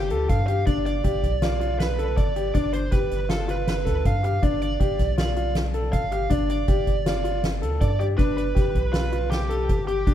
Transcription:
Already playing: G1 G4
0.10 D2 A4, closed hi-hat
0.29 G2 F5, kick, closed hi-hat
0.47 G4 F5, closed hi-hat
0.66 G1 D4 D5, kick, closed hi-hat
0.86 D5, closed hi-hat
1.04 G1 G4, kick, closed hi-hat
1.23 B1, kick, closed hi-hat
1.42 F4 D5, snare, closed hi-hat
1.60 F4, closed hi-hat
1.80 B4, snare, closed hi-hat
1.99 A4, closed hi-hat
2.17 G1 D5, kick, closed hi-hat
2.36 G4, closed hi-hat
2.54 G1 D4 D5, kick, closed hi-hat
2.73 C5, closed hi-hat
2.92 G1 G4 B4, kick, closed hi-hat
3.11 G1, snare, closed hi-hat
3.29 F4 A4, snare, closed hi-hat
3.48 F4 B4, closed hi-hat
3.67 B4, snare, closed hi-hat
3.85 D2 A4, kick, snare, closed hi-hat
4.05 G2 F5, kick, closed hi-hat
4.23 G4 F5, closed hi-hat
4.42 G1 D4 D5, kick, closed hi-hat
4.62 D5, closed hi-hat
4.80 G1 G4, kick, closed hi-hat
4.99 B1, kick, snare, closed hi-hat
5.18 F4 D5, snare, closed hi-hat
5.36 F4, closed hi-hat
5.55 snare, closed hi-hat
5.74 A4, closed hi-hat
5.93 G1 F5, kick, closed hi-hat
6.11 G4 F5, closed hi-hat
6.30 G1 D4 D5, kick, closed hi-hat
6.50 D5, closed hi-hat
6.68 G1 G4, kick, closed hi-hat
6.87 G1, kick, closed hi-hat
7.06 F4 D5, snare, closed hi-hat
7.24 F4, closed hi-hat
7.44 snare, closed hi-hat
7.62 D2 A4, closed hi-hat
7.81 G2 D5, kick, closed hi-hat
7.99 G4 D5, closed hi-hat
8.18 G1 D4 B4, kick, closed hi-hat
8.37 B4, closed hi-hat
8.55 G1 G4, kick, snare, closed hi-hat
8.75 B1, kick, closed hi-hat
8.93 F4 B4, snare, closed hi-hat
9.12 F4, closed hi-hat
9.30 G4, snare, closed hi-hat
9.49 A4, closed hi-hat
9.69 G1, kick, closed hi-hat
9.87 G4, closed hi-hat
10.07 G1 D4, kick, closed hi-hat

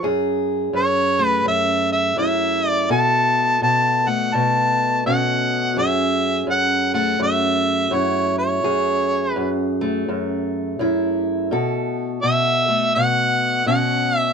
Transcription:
0.03 F#2 G#4
0.73 F#2 C#5
1.19 A3
1.26 B4
1.45 F#2 E5
1.93 E5
2.17 F#2 E4 E5
2.69 D5
2.89 B2 A4 A5
3.62 B2 A5
4.07 A3 F#5
4.34 B2 A5
5.06 B2 C#4 F#5
5.77 F#2 G#4 E5
6.47 F#2 F#5
6.94 A3 F#5
7.20 F#2 E5
7.91 F#2 E4 C#5
8.39 C#5
8.64 F#2 G#4
9.32 B4
9.36 F#2
9.81 A3
10.09 F#2
10.79 F#2 E4
11.51 B2 A4
12.23 B2 E5
12.69 A3
12.95 B2 F#5
13.66 B2 C#4 F#5
14.18 E5

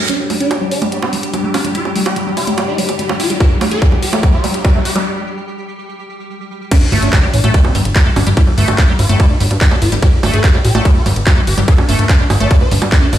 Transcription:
Already playing: C4 C5 A5
0.09 G3 D4 G4, closed hi-hat, riser
0.18 G3 G4
0.30 G3 A3, open hi-hat, high bongo
0.40 D4, closed hi-hat
0.51 G3 G5, closed hi-hat, high bongo
0.61 G3
0.71 D4, open hi-hat
0.78 G3 A3 D5, closed hi-hat, high bongo
0.92 G3, closed hi-hat
1.02 C4, high bongo
1.13 G3, open hi-hat
1.23 closed hi-hat
1.34 G3, closed hi-hat, high bongo
1.44 G3 A3
1.54 D4, open hi-hat, high bongo
1.65 G3, closed hi-hat
1.75 G3 F4, closed hi-hat
1.85 G3, high bongo
1.96 G3 A3, open hi-hat
2.06 G4, closed hi-hat, high bongo
2.16 G3, closed hi-hat
2.27 G3
2.37 F4, open hi-hat, high bongo
2.47 G3 A3, closed hi-hat
2.58 G3, closed hi-hat, high bongo
2.68 D#4
2.78 G3, open hi-hat
2.89 closed hi-hat, high bongo
2.99 G3, closed hi-hat
3.09 G3 A3, high bongo
3.20 F4, open hi-hat
3.30 G3, closed hi-hat
3.40 G3 G4, kick, closed hi-hat, high bongo
3.51 G3
3.61 G3 A3, open hi-hat, high bongo
3.71 A4, closed hi-hat
3.82 G3, kick, closed hi-hat
3.92 G3, high bongo
4.03 G4, open hi-hat
4.13 G3 A3, closed hi-hat, high bongo
4.23 G3, kick, closed hi-hat
4.34 F4
4.44 G3, open hi-hat, high bongo
4.54 closed hi-hat
4.65 G3, kick, closed hi-hat, high bongo
4.75 G3 A3
4.85 G4, open hi-hat
4.96 G3, closed hi-hat, high bongo
6.71 G3 D4, kick, closed hi-hat, crash, ride, impact
6.82 G3
6.92 G1 G3 A3, open hi-hat, high bongo
7.03 G1 D4, closed hi-hat
7.13 G3, kick, clap, closed hi-hat, ride, high bongo
7.23 G3
7.34 A1 D4, open hi-hat
7.44 A1 G3 A3, closed hi-hat, high bongo
7.54 G3, kick, closed hi-hat, ride
7.65 C4, high bongo
7.75 G1 G3, open hi-hat
7.85 G1, closed hi-hat
7.96 G3, kick, clap, closed hi-hat, ride, high bongo
8.06 G3 A3
8.16 G1 D4, open hi-hat, high bongo
8.27 G1 G3, closed hi-hat
8.37 G3 F4, kick, closed hi-hat, ride
8.47 G3, high bongo
8.58 G1 G3 A3, open hi-hat
8.68 G1 G4, closed hi-hat, high bongo
8.78 G3, kick, clap, closed hi-hat, ride
8.89 G3
8.99 G1 F4, open hi-hat, high bongo
9.09 G1 G3 A3, closed hi-hat
9.20 G3, kick, closed hi-hat, ride, high bongo
9.30 D#4
9.40 G1 G3, open hi-hat
9.51 G2, closed hi-hat, high bongo
9.61 G3, kick, clap, closed hi-hat, ride
9.71 G3 A3, high bongo
9.82 G1 F4, open hi-hat
9.92 G1 G3, closed hi-hat
10.02 G3 G4, kick, closed hi-hat, ride, high bongo
10.13 G3
10.23 G1 G3 A3, open hi-hat, high bongo
10.34 G1 A4, closed hi-hat
10.44 G3, kick, clap, closed hi-hat, ride
10.54 G3, high bongo
10.65 A1 G4, open hi-hat
10.75 A1 G3 A3, closed hi-hat, high bongo
10.85 G3, kick, closed hi-hat, ride
10.96 F4
11.06 G1 G3, open hi-hat, high bongo
11.16 G1, closed hi-hat
11.27 G3, kick, clap, closed hi-hat, ride, high bongo
11.37 G3 A3
11.47 G1 G4, open hi-hat
11.58 G1 G3, closed hi-hat, high bongo
11.68 G3 A4, kick, closed hi-hat, ride
11.78 D4, high bongo
11.89 G1 A3 D4, open hi-hat
11.99 G1 A#4, closed hi-hat
12.09 G3 D4, kick, clap, closed hi-hat, ride, high bongo
12.20 G3 D4
12.30 G1 A4, open hi-hat, high bongo
12.40 G1 A3 D4, closed hi-hat
12.51 G3 D4, kick, closed hi-hat, ride
12.61 C5, high bongo
12.71 G1 G3 D4, open hi-hat
12.82 G2, closed hi-hat, high bongo
12.92 G3 D4, kick, clap, closed hi-hat, ride
13.02 A3 D4
13.13 G1 D#5, open hi-hat, high bongo

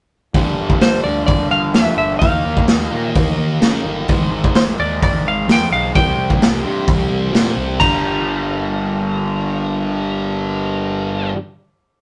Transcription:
0.34 G1 G2 D3 G3 A#3 D4 F4, kick, open hi-hat
0.58 G1
0.70 kick
0.81 G1 C5, snare, open hi-hat
1.04 D2 D3 G3 D5
1.08 G2
1.26 G1 D5, kick, open hi-hat
1.51 G1 F5
1.74 F2 G2 D3 G3 E5, snare, open hi-hat
1.97 G1 E5
2.19 D#2 D#3 F#3 D#4 F5, kick, open hi-hat
2.23 A#3 D#4
2.45 D#2
2.57 kick
2.68 D#2, snare, open hi-hat
2.92 A#2 D#3 A#3 D#4
3.12 D#2 D#5, kick, open hi-hat
3.38 D#2
3.61 C#3 D#3 A#3 D#4, snare, open hi-hat
3.85 G1
4.07 G#1 G#2 D#3 G#3 C4 G#4, kick, open hi-hat
4.32 G#1
4.44 kick
4.55 G#1 C5, snare, open hi-hat
4.77 D#2 G#2 D#3 G#3 D5
5.02 G#1 D5, kick, open hi-hat
5.25 G#1 F5
5.47 F2 G#2 D#3 G#3, snare, open hi-hat
5.52 G5
5.71 B1 F5
5.93 C2 C3 G3 A3 C4 E4 G4 G5, kick, open hi-hat
6.17 C2
6.30 kick
6.41 C2, snare, open hi-hat
6.64 G2 C3 G3 C4
6.87 C2, kick, open hi-hat
7.09 C2
7.31 A#2 C3 G3 C4, snare, open hi-hat
7.56 C2
7.78 G1 G2 D3 A#3 D4 F4 G4 A#5, kick, crash
7.83 G3

